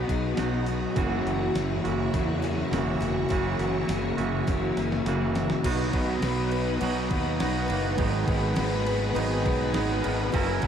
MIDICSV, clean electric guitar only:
0, 0, Header, 1, 2, 480
1, 0, Start_track
1, 0, Key_signature, 5, "major"
1, 0, Tempo, 584795
1, 795, Time_signature, 4, 2, 24, 8
1, 8760, End_track
2, 0, Start_track
2, 0, Title_t, "Clean electric guitar"
2, 0, Program_c, 0, 27
2, 0, Note_on_c, 0, 47, 71
2, 0, Note_on_c, 0, 54, 70
2, 0, Note_on_c, 0, 63, 82
2, 0, Note_on_c, 0, 66, 79
2, 287, Note_off_c, 0, 47, 0
2, 295, Note_off_c, 0, 63, 0
2, 297, Note_on_c, 0, 47, 74
2, 301, Note_off_c, 0, 54, 0
2, 305, Note_on_c, 0, 54, 73
2, 317, Note_off_c, 0, 66, 0
2, 317, Note_on_c, 0, 63, 76
2, 320, Note_on_c, 0, 66, 88
2, 771, Note_off_c, 0, 47, 0
2, 778, Note_on_c, 0, 42, 92
2, 781, Note_off_c, 0, 63, 0
2, 787, Note_on_c, 0, 49, 91
2, 792, Note_off_c, 0, 54, 0
2, 792, Note_on_c, 0, 58, 91
2, 795, Note_on_c, 0, 52, 89
2, 801, Note_off_c, 0, 66, 0
2, 801, Note_on_c, 0, 64, 97
2, 804, Note_on_c, 0, 66, 95
2, 1495, Note_off_c, 0, 49, 0
2, 1507, Note_off_c, 0, 66, 0
2, 1510, Note_on_c, 0, 66, 85
2, 1514, Note_off_c, 0, 64, 0
2, 1517, Note_on_c, 0, 64, 85
2, 1518, Note_off_c, 0, 58, 0
2, 1521, Note_on_c, 0, 58, 74
2, 1524, Note_off_c, 0, 52, 0
2, 1528, Note_on_c, 0, 52, 77
2, 1532, Note_off_c, 0, 42, 0
2, 1533, Note_on_c, 0, 49, 73
2, 1535, Note_on_c, 0, 42, 70
2, 2211, Note_off_c, 0, 42, 0
2, 2218, Note_off_c, 0, 49, 0
2, 2220, Note_off_c, 0, 64, 0
2, 2221, Note_on_c, 0, 42, 76
2, 2222, Note_off_c, 0, 52, 0
2, 2228, Note_on_c, 0, 49, 82
2, 2232, Note_on_c, 0, 52, 81
2, 2236, Note_off_c, 0, 58, 0
2, 2239, Note_on_c, 0, 58, 83
2, 2243, Note_off_c, 0, 66, 0
2, 2244, Note_on_c, 0, 64, 80
2, 2246, Note_on_c, 0, 66, 85
2, 2692, Note_off_c, 0, 42, 0
2, 2695, Note_off_c, 0, 49, 0
2, 2697, Note_off_c, 0, 52, 0
2, 2702, Note_on_c, 0, 42, 92
2, 2703, Note_off_c, 0, 64, 0
2, 2707, Note_on_c, 0, 49, 85
2, 2712, Note_on_c, 0, 52, 93
2, 2717, Note_off_c, 0, 58, 0
2, 2720, Note_off_c, 0, 66, 0
2, 2720, Note_on_c, 0, 58, 93
2, 2720, Note_on_c, 0, 64, 93
2, 2723, Note_on_c, 0, 66, 110
2, 3412, Note_off_c, 0, 42, 0
2, 3413, Note_off_c, 0, 66, 0
2, 3414, Note_off_c, 0, 49, 0
2, 3417, Note_off_c, 0, 52, 0
2, 3421, Note_off_c, 0, 58, 0
2, 3421, Note_off_c, 0, 64, 0
2, 3422, Note_on_c, 0, 66, 89
2, 3430, Note_on_c, 0, 64, 83
2, 3434, Note_on_c, 0, 58, 77
2, 3441, Note_on_c, 0, 52, 76
2, 3445, Note_on_c, 0, 49, 75
2, 3448, Note_on_c, 0, 42, 75
2, 4132, Note_off_c, 0, 66, 0
2, 4136, Note_off_c, 0, 64, 0
2, 4138, Note_off_c, 0, 58, 0
2, 4139, Note_off_c, 0, 42, 0
2, 4141, Note_off_c, 0, 52, 0
2, 4143, Note_off_c, 0, 49, 0
2, 4149, Note_on_c, 0, 42, 72
2, 4153, Note_on_c, 0, 49, 70
2, 4161, Note_on_c, 0, 52, 85
2, 4163, Note_on_c, 0, 58, 89
2, 4167, Note_on_c, 0, 64, 73
2, 4172, Note_on_c, 0, 66, 91
2, 4615, Note_off_c, 0, 42, 0
2, 4617, Note_off_c, 0, 49, 0
2, 4621, Note_off_c, 0, 52, 0
2, 4623, Note_off_c, 0, 58, 0
2, 4624, Note_off_c, 0, 64, 0
2, 4627, Note_off_c, 0, 66, 0
2, 4633, Note_on_c, 0, 47, 95
2, 4639, Note_on_c, 0, 54, 96
2, 4641, Note_on_c, 0, 63, 99
2, 4645, Note_on_c, 0, 66, 118
2, 5578, Note_off_c, 0, 47, 0
2, 5587, Note_on_c, 0, 47, 90
2, 5590, Note_off_c, 0, 54, 0
2, 5593, Note_on_c, 0, 54, 86
2, 5594, Note_off_c, 0, 63, 0
2, 5604, Note_off_c, 0, 66, 0
2, 5604, Note_on_c, 0, 63, 90
2, 5607, Note_on_c, 0, 66, 97
2, 6065, Note_off_c, 0, 54, 0
2, 6068, Note_on_c, 0, 54, 82
2, 6074, Note_off_c, 0, 63, 0
2, 6084, Note_on_c, 0, 63, 85
2, 6086, Note_off_c, 0, 66, 0
2, 6089, Note_on_c, 0, 66, 81
2, 6305, Note_off_c, 0, 63, 0
2, 6306, Note_off_c, 0, 66, 0
2, 6310, Note_off_c, 0, 47, 0
2, 6310, Note_on_c, 0, 66, 72
2, 6314, Note_on_c, 0, 63, 64
2, 6327, Note_on_c, 0, 58, 60
2, 6539, Note_off_c, 0, 63, 0
2, 6539, Note_on_c, 0, 44, 92
2, 6545, Note_on_c, 0, 51, 98
2, 6548, Note_off_c, 0, 54, 0
2, 6550, Note_off_c, 0, 58, 0
2, 6552, Note_on_c, 0, 54, 110
2, 6553, Note_on_c, 0, 59, 95
2, 6559, Note_on_c, 0, 63, 114
2, 6564, Note_off_c, 0, 66, 0
2, 7489, Note_off_c, 0, 44, 0
2, 7495, Note_off_c, 0, 51, 0
2, 7499, Note_on_c, 0, 44, 84
2, 7501, Note_off_c, 0, 59, 0
2, 7505, Note_off_c, 0, 63, 0
2, 7505, Note_on_c, 0, 51, 94
2, 7509, Note_off_c, 0, 54, 0
2, 7510, Note_on_c, 0, 59, 98
2, 7512, Note_on_c, 0, 54, 103
2, 7515, Note_on_c, 0, 63, 104
2, 7979, Note_off_c, 0, 54, 0
2, 7983, Note_on_c, 0, 54, 82
2, 7984, Note_off_c, 0, 59, 0
2, 7991, Note_off_c, 0, 63, 0
2, 7994, Note_on_c, 0, 59, 82
2, 8001, Note_on_c, 0, 63, 93
2, 8221, Note_on_c, 0, 70, 72
2, 8225, Note_off_c, 0, 63, 0
2, 8230, Note_off_c, 0, 44, 0
2, 8233, Note_off_c, 0, 51, 0
2, 8234, Note_off_c, 0, 59, 0
2, 8235, Note_on_c, 0, 63, 71
2, 8244, Note_on_c, 0, 59, 64
2, 8245, Note_off_c, 0, 54, 0
2, 8249, Note_on_c, 0, 54, 64
2, 8463, Note_off_c, 0, 63, 0
2, 8467, Note_off_c, 0, 59, 0
2, 8473, Note_off_c, 0, 54, 0
2, 8476, Note_on_c, 0, 54, 94
2, 8483, Note_on_c, 0, 61, 95
2, 8489, Note_on_c, 0, 64, 109
2, 8493, Note_off_c, 0, 70, 0
2, 8497, Note_on_c, 0, 70, 112
2, 8760, Note_off_c, 0, 54, 0
2, 8760, Note_off_c, 0, 61, 0
2, 8760, Note_off_c, 0, 64, 0
2, 8760, Note_off_c, 0, 70, 0
2, 8760, End_track
0, 0, End_of_file